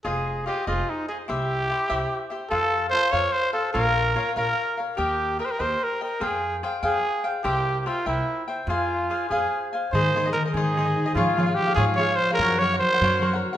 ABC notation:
X:1
M:6/8
L:1/16
Q:3/8=97
K:Fm
V:1 name="Cavaquinho"
[FAce]4 [FAce]2 [FAce]4 [Ace]2 | [=EGc=e]4 [EGce]2 [EGce]4 [Gce]2 | [F=Acf]4 [FAcf]2 [FAcf]4 [Acf]2 | [FBdf]4 [FBdf]2 [FBdf]4 [Bdf]2 |
[GBeg]4 [GBeg]2 [GBeg]4 [Beg]2 | [Acfg]4 [Acfg]2 [Acfg]4 [cfg]2 | [Bc=eg]4 [Bceg]2 [Bceg]4 [ceg]2 | [Acfa]4 [Acfa]2 [Acfa]4 [cfa]2 |
[K:Ab] [EAce]2 [EAce] [Ace]2 [Ace] [EAce]2 [EAce] [Ace]2 [Ace] | [FAdf]2 [FAdf] [Adf]2 [Adf] [FAdf]2 [FAdf] [Adf]2 [Adf] | [_GBd_g]2 [GBdg] [Bdg]2 [Bdg] [GBdg]2 [GBdg] [Bdg]2 g |]
V:2 name="Trumpet"
A4 G2 F2 E2 A2 | G8- G2 z2 | =A4 c2 d2 c2 A2 | B6 B4- B/2 z3/2 |
G4 B/2 c/2 B c2 B2 B2 | A3- A/2 z2 z/2 A4- A/2 z3/2 | G3- G/2 G/2 F2 =E4 z2 | F6 A4 z2 |
[K:Ab] c4 B2 A6 | F4 G2 A2 d2 c2 | B2 d2 c6 z2 |]
V:3 name="Harp" clef=bass
z12 | z12 | z12 | z12 |
z12 | z12 | z12 | z12 |
[K:Ab] E,2 E,2 E,2 E,2 E,2 E2 | F,2 F,2 F,2 F,2 F,2 F2 | _G,2 G,2 G,2 G,2 G,2 _G2 |]
V:4 name="Upright bass" clef=bass
F,,,6 F,,,2 z4 | C,,6 C,,2 z4 | F,,6 F,,2 z4 | B,,,6 B,,,2 z4 |
E,,6 E,,2 z4 | F,,6 F,,2 z4 | C,,6 C,,2 z4 | F,,6 F,,2 z4 |
[K:Ab] A,,6 A,,6 | A,,6 A,,6 | _G,,6 G,,6 |]